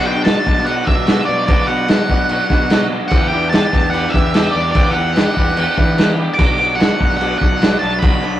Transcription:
Already playing: B2
0.06 B2 F#3 B3 D4 F#4 G5
0.24 B2 F#3 B3 D4 F#4 A5, snare, crash
0.47 B2 F#3 B3 D4 F#4, kick
0.57 snare
0.66 B2 F#3 B3 D4 F#4 F#5, crash
0.86 B2 F#3 B3 D4 F#4 E5, kick
1.07 B2 F#3 B3 D4 F#4, snare, crash
1.25 B2 F#3 B3 D4 F#4 D5
1.46 B2 F#3 B3 D4 F#4 D5, kick, crash
1.67 B2 F#3 B3 D4 F#4 F#5
1.88 B2 F#3 B3 D4 F#4, snare, crash
2.09 B2 F#3 B3 D4 F#4, kick
2.29 B2 F#3 B3 D4 F#4, crash
2.49 B2 F#3 B3 D4 F#4, kick, snare
2.70 B2 F#3 B3 D4 F#4, snare, crash
2.90 B2 F#3 B3 D4 F#4
3.08 E2 E3 F#5, kick, crash
3.12 B3 D4 G4
3.28 E3 B3 G5
3.33 D4 G4
3.50 E3 B3 D4 G4 A5, crash
3.54 snare
3.73 E2 E3 B3 D4 G4, kick
3.90 E3 F#5, crash
3.94 B3 D4 G4
4.10 E5
4.14 E2 E3 B3 D4 G4, kick
4.34 E3 B3 D4 G4, snare, crash
4.51 E2 D5
4.56 E3 B3 D4 G4
4.71 E3 D5, kick, crash
4.76 E2 B3 D4 G4
4.91 F#5
4.96 E3 B3 D4 G4
5.16 E3 B3 D4 G4, snare, crash
5.36 E2 E3 B3 D4 G4, kick
5.49 snare
5.57 E2 E3 B3 D4 G4, crash
5.77 E3 B3 D4 G4, kick
5.97 E3 B3 D4 G4, snare, crash
6.18 E3 B3 D4 G4
6.34 D6
6.39 B1 B2 F#3 B3 D4 F#4, kick, crash
6.59 B2 F#3 B3 D4 F#4
6.75 B2 F#3 B3 D4 F#5
6.80 F#4, snare, crash
6.99 B1 B2 F#3 B3 D4 F#4, kick
7.13 snare
7.17 B2 F#3 B3 F#5, crash
7.21 D4 F#4
7.38 B1 B2 F#3 B3 D4 F#4 F#5, kick
7.61 B2 F#3 B3 D4 F#4, snare, crash
7.79 B1 B2 F#3 B3 D4 A5
7.84 F#4
7.99 B5, kick, crash
8.03 B1 B2 F#3 B3 D4 F#4
8.23 B2 F#3 B3 D4 F#4

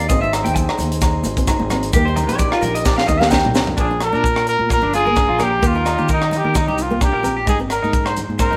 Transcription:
Already playing: D#4
0.08 G#1 C4 G#4 C5 D#5, kick, closed hi-hat, maracas
0.21 D#4 E5
0.33 cross-stick, closed hi-hat, low agogo, maracas
0.44 D#2 G5, closed hi-hat, high conga
0.55 muted clean electric guitar stroke, kick, closed hi-hat, low conga, maracas
0.69 cross-stick, low agogo
0.78 D#2, closed hi-hat, high conga, low conga, maracas
0.92 closed hi-hat
1.01 kick, cross-stick, closed hi-hat, low agogo, maracas
1.24 G#1 D#4, closed hi-hat, high conga, maracas
1.37 C4, kick, closed hi-hat
1.47 D#4, kick, cross-stick, closed hi-hat, low agogo, maracas
1.60 G#1, high conga
1.70 C4, cross-stick, closed hi-hat, low conga, low agogo, maracas
1.83 closed hi-hat
1.93 D#2 A#3 G4 A#4, kick, closed hi-hat, maracas
2.05 D#4 C5
2.16 muted clean electric guitar stroke, closed hi-hat, low conga, low agogo, maracas
2.29 A#1 C#5, closed hi-hat, high conga
2.39 D5, kick, closed hi-hat, low conga, maracas
2.52 F4, cross-stick, low agogo
2.61 A#1 A#4, closed hi-hat, low conga, maracas
2.75 D#5, closed hi-hat
2.85 D5, kick, snare, low agogo, maracas
2.98 F5, snare
3.08 D#2 D#4 D#5, kick, high conga, maracas
3.20 A#3 F5, snare, high conga
3.31 D4 G5, kick, snare, high conga, low agogo, maracas
3.44 C2, mid tom, high conga
3.54 C4, snare, low conga, low agogo, maracas
3.67 floor tom, low conga
3.77 A#1 D4 G#4, kick, maracas
3.91 D4
4.00 A#4, cross-stick, closed hi-hat, low agogo, maracas
4.13 A#2 D4, high conga, maracas
4.24 kick, maracas
4.36 A#4, cross-stick, low agogo, maracas
4.47 A#4, closed hi-hat, maracas
4.59 A#2, high conga
4.69 A#4, kick, cross-stick, high conga, low agogo, maracas
4.82 G1 D4, low conga
4.94 D4 F4 G#4, closed hi-hat, maracas
5.05 A#3 A#4, high conga
5.16 D4, kick, cross-stick, low agogo, maracas
5.29 A#1 F4
5.38 A#3 A#4, cross-stick, closed hi-hat, low conga, low agogo, maracas
5.43 G4
5.62 D#2 A#3 G4, kick, maracas
5.67 F4
5.75 D#4 A#4
5.85 D#4, cross-stick, closed hi-hat, low agogo, maracas
5.98 D#3 G4, high conga, maracas
6.09 A#4, kick, maracas
6.13 D#4
6.21 D#4, cross-stick, low agogo, maracas
6.31 D#4, closed hi-hat, low conga, maracas
6.37 G4
6.44 D#3 A#4, high conga
6.55 D#4, kick, cross-stick, high conga, low agogo, maracas
6.67 C2 G4, low conga
6.78 D#4 F4, closed hi-hat, maracas
6.90 A#3, high conga
7.01 D4 G4, kick, cross-stick, low agogo, maracas
7.13 A#1 A#4
7.23 C4, closed hi-hat, low conga, low agogo, maracas
7.37 G4
7.47 G#1 G#3 D#4 G#4, kick, maracas
7.60 C4
7.70 A#4, cross-stick, closed hi-hat, low agogo, maracas
7.83 G#2 D#4, high conga, maracas
7.93 kick, maracas
8.05 C5, cross-stick, low agogo, maracas
8.17 closed hi-hat, low conga, maracas
8.29 G#2, high conga
8.39 A#4 C5, kick, cross-stick, high conga, low agogo, maracas
8.51 F1 D#4, low conga

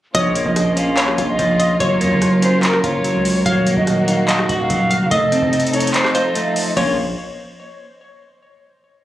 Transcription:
0.15 A#1 F3 A#3 C#4 F4 C#5 D#5, kick, closed hi-hat
0.35 A#3, closed hi-hat
0.46 A#1 D#5, kick
0.56 D#5, cross-stick, closed hi-hat
0.77 C#4 F5, closed hi-hat
0.97 C#5, clap, closed hi-hat
1.08 C#5, cross-stick
1.18 A#1 F4, kick, closed hi-hat
1.29 D#5
1.39 A#1 F3, kick, closed hi-hat
1.60 D#5, closed hi-hat
1.80 F#1 F#3 A#4 C#5, kick, closed hi-hat
2.01 F#2 A#3, closed hi-hat
2.11 F#1, kick
2.22 cross-stick, closed hi-hat
2.42 C#4 C5, closed hi-hat
2.63 A#4, clap, closed hi-hat
2.73 cross-stick
2.84 F#1 F4 C#5, kick, closed hi-hat
3.04 F#3, closed hi-hat
3.15 C#2
3.25 open hi-hat
3.46 D#1 D#3 F#3 A#3 F#4 C#5 F5, kick, closed hi-hat
3.67 A#3, closed hi-hat
3.77 D#1 D#5, kick
3.87 D#5, cross-stick, closed hi-hat
4.08 D#4 F5, closed hi-hat
4.29 D#5, clap, closed hi-hat
4.39 D#5, cross-stick
4.49 D#1 F#4, kick, closed hi-hat
4.59 F5
4.70 D#1 F#3, kick, closed hi-hat
4.91 F5, closed hi-hat
5.01 F#1
5.11 F1 F3 A3 D#4 A4 D#5, kick, closed hi-hat
5.32 C4, closed hi-hat
5.42 F1, kick
5.53 closed hi-hat
5.60 closed hi-hat
5.67 closed hi-hat
5.73 D#4 C#5, closed hi-hat
5.80 closed hi-hat
5.87 closed hi-hat
5.94 C5, clap, closed hi-hat
6.04 cross-stick, clap
6.14 F4 C5 D#5, closed hi-hat
6.35 A3, closed hi-hat
6.56 open hi-hat
6.76 A#1 F3 A#3 C#4 F4 C#5, kick, crash

